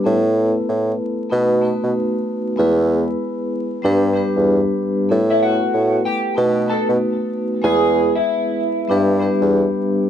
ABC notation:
X:1
M:4/4
L:1/16
Q:"Swing 16ths" 1/4=95
K:Bphr
V:1 name="Clean electric guitar"
z16 | z16 | z [Ee] [Ff]4 [Gg]2 z2 [Aa] z4 z | [^G^g]3 [Ee]8- [Ee]2 z3 |]
V:2 name="Vibraphone"
[A,B,EAB]6- [A,B,EAB] z [A,B,^DFB]2 [A,B,DFB]6 | [^G,B,E^GB]6- [G,B,EGB] z [=G,B,D=GB]2 [G,B,DGB]6 | [A,B,EAB]6- [A,B,EAB] z [A,B,^DFB]2 [A,B,DFB]6 | [^G,B,E^GB]6- [G,B,EGB] z [=G,B,D=GB]2 [G,B,DGB]6 |]
V:3 name="Bassoon" clef=bass
A,,4 A,,2 z2 B,,3 B,, z4 | E,,4 z4 G,,3 E,,2 z3 | A,,4 A,,2 z2 B,,3 B,, z4 | E,,4 z4 G,,3 E,,2 z3 |]